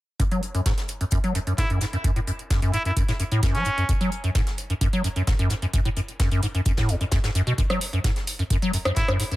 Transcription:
0.20 acid bass F#2, kick, closed hi-hat
0.31 acid bass F#3, closed hi-hat
0.43 closed hi-hat
0.55 acid bass F#2, closed hi-hat
0.66 acid bass G#2, kick, snare, closed hi-hat
0.78 snare, closed hi-hat
0.88 closed hi-hat
1.01 acid bass F#2, closed hi-hat
1.11 acid bass F#2, kick, closed hi-hat
1.24 acid bass F#3, closed hi-hat
1.35 acid bass F#2, closed hi-hat
1.47 acid bass F#2, closed hi-hat
1.58 acid bass G#2, muted trumpet E4, kick, snare, closed hi-hat
1.70 acid bass F#2, closed hi-hat
1.81 acid bass G#2, snare, closed hi-hat
1.93 acid bass F#2, closed hi-hat
2.04 acid bass F#2, kick, closed hi-hat
2.16 acid bass A2, closed hi-hat
2.27 acid bass F#2, closed hi-hat
2.39 closed hi-hat
2.50 acid bass F#2, kick, snare, closed hi-hat
2.62 acid bass F#2, closed hi-hat
2.73 acid bass G#2, muted trumpet E4, closed hi-hat
2.85 acid bass F#2, muted trumpet E4, closed hi-hat
2.97 acid bass F#2, kick, closed hi-hat
3.08 acid bass A2, snare, closed hi-hat
3.19 acid bass F#2, closed hi-hat
3.32 acid bass A2, closed hi-hat
3.43 acid bass F#2, kick, snare, closed hi-hat
3.55 acid bass F#3, muted trumpet C#4, snare, closed hi-hat
3.65 acid bass G#2, closed hi-hat
3.78 acid bass F#2, closed hi-hat
3.89 acid bass F#2, kick, closed hi-hat
4.01 acid bass F#3, closed hi-hat
4.12 closed hi-hat
4.24 acid bass F#2, closed hi-hat
4.35 acid bass G#2, kick, snare, closed hi-hat
4.47 snare, closed hi-hat
4.58 closed hi-hat
4.70 acid bass F#2, closed hi-hat
4.81 acid bass F#2, kick, closed hi-hat
4.93 acid bass F#3, closed hi-hat
5.04 acid bass F#2, closed hi-hat
5.16 acid bass F#2, closed hi-hat
5.27 acid bass G#2, kick, snare, closed hi-hat
5.39 acid bass F#2, closed hi-hat
5.50 acid bass G#2, snare, closed hi-hat
5.62 acid bass F#2, closed hi-hat
5.73 acid bass F#2, kick, closed hi-hat
5.85 acid bass A2, closed hi-hat
5.97 acid bass F#2, closed hi-hat
6.08 closed hi-hat
6.19 acid bass F#2, kick, snare, closed hi-hat
6.31 acid bass F#2, closed hi-hat
6.42 acid bass G#2, closed hi-hat
6.55 acid bass F#2, closed hi-hat
6.65 acid bass F#2, kick, closed hi-hat
6.77 acid bass A2, kick, snare, closed hi-hat
6.89 acid bass E2, closed hi-hat
7.01 acid bass F#2, closed hi-hat
7.11 acid bass F#2, kick, snare, closed hi-hat
7.24 acid bass G#2, snare, closed hi-hat
7.35 acid bass F#2, closed hi-hat
7.47 acid bass B2, closed hi-hat
7.58 acid bass F#2, kick, closed hi-hat
7.70 acid bass F#3, cross-stick, closed hi-hat
7.81 closed hi-hat, open hi-hat
7.93 acid bass F#2, closed hi-hat
8.04 acid bass G#2, kick, snare, closed hi-hat
8.16 snare, closed hi-hat
8.27 closed hi-hat, open hi-hat
8.39 acid bass F#2, closed hi-hat
8.50 acid bass F#2, kick, closed hi-hat
8.62 acid bass F#3, closed hi-hat
8.73 acid bass F#2, closed hi-hat, open hi-hat
8.85 acid bass F#2, cross-stick, closed hi-hat
8.96 acid bass G#2, muted trumpet E4, kick, snare, closed hi-hat
9.08 acid bass F#2, cross-stick, closed hi-hat
9.20 acid bass G#2, snare, closed hi-hat, open hi-hat
9.31 acid bass F#2, closed hi-hat

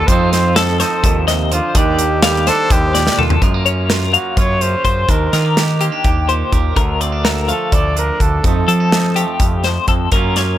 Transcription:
Already playing: clean electric guitar F4
0.07 picked electric bass F2, clean electric guitar F2 F3 C4 F4, trumpet C5, kick, closed hi-hat
0.12 clean electric guitar D#4 A4
0.32 clean electric guitar C4, trumpet C5, snare, closed hi-hat
0.56 clean electric guitar F3 A4, trumpet A4, snare, closed hi-hat
0.80 clean electric guitar D#4 C5, trumpet A4, snare, closed hi-hat
1.03 picked electric bass D#2, clean electric guitar A#2, kick, closed hi-hat
1.28 clean electric guitar C3 D#5, snare, closed hi-hat
1.51 clean electric guitar D3 C5, trumpet F4, closed hi-hat
1.75 picked electric bass D#2, clean electric guitar D#3 D4 D5, trumpet G4, kick, closed hi-hat
1.99 clean electric guitar A#3, closed hi-hat
2.23 clean electric guitar G3 F5, trumpet G4, snare, closed hi-hat
2.47 clean electric guitar D4 C5, trumpet A4, snare, closed hi-hat
2.70 picked electric bass D#2, trumpet G4, kick, closed hi-hat
2.95 clean electric guitar A#2 D5, snare, closed hi-hat
3.07 snare
3.18 picked electric bass D#2, clean electric guitar F4 A4, mid tom
3.30 floor tom
3.41 clean electric guitar F#2 G#3 A#4, picked electric bass F#2, kick, closed hi-hat
3.54 clean electric guitar A#3
3.66 clean electric guitar C#4 C#5, closed hi-hat
3.89 clean electric guitar F4 A#4, snare, closed hi-hat
4.12 clean electric guitar F#3 A#3 F5, trumpet F#4, closed hi-hat
4.37 picked electric bass F#2, clean electric guitar F4 C#5, trumpet C#5, kick, closed hi-hat
4.61 clean electric guitar C#3 C#4, trumpet C5, closed hi-hat
4.85 picked electric bass F#2, clean electric guitar F4 C5, kick, closed hi-hat
5.08 picked electric bass D#2, clean electric guitar D#3 D4, trumpet A#4, kick, closed hi-hat
5.33 picked electric bass D#3, clean electric guitar F4 A#4, snare, closed hi-hat
5.45 clean electric guitar G4
5.57 clean electric guitar G4, snare, closed hi-hat
5.80 clean electric guitar A#3 C4 G4, closed hi-hat
5.92 clean electric guitar D4
6.04 picked electric bass D#2, clean electric guitar G4, kick, closed hi-hat
6.27 clean electric guitar A#2 G4 C5, closed hi-hat
6.52 picked electric bass D#2, clean electric guitar G4 A#4, kick, closed hi-hat
6.76 picked electric bass D2, clean electric guitar D3 A3 A#4, kick, closed hi-hat
7.00 clean electric guitar C4 D5, closed hi-hat
7.12 clean electric guitar D4
7.24 clean electric guitar A4 A#4, snare, closed hi-hat
7.47 clean electric guitar F3 A3 F5, trumpet A4, closed hi-hat
7.72 picked electric bass D2, clean electric guitar A4 D5, trumpet D5, kick, closed hi-hat
7.96 clean electric guitar D3 D4, trumpet A#4, closed hi-hat
8.20 picked electric bass D2, clean electric guitar D4, trumpet A4, kick, closed hi-hat
8.43 clean electric guitar F2 F3 A3 D#4, picked electric bass F2, trumpet A4, kick, closed hi-hat
8.67 picked electric bass F3, clean electric guitar C4 A4, closed hi-hat
8.80 clean electric guitar D#4
8.92 clean electric guitar D#4, snare, closed hi-hat
9.16 clean electric guitar F3 A3 G4, closed hi-hat
9.40 picked electric bass F2, kick, closed hi-hat
9.64 clean electric guitar C5, snare, closed hi-hat
9.87 clean electric guitar F2 A4, picked electric bass F2, kick, closed hi-hat
10.12 clean electric guitar F#2 F#3 A#3 C#4 F4 A#4, picked electric bass F#2, kick, closed hi-hat
10.36 clean electric guitar C#4 C#5, snare, closed hi-hat

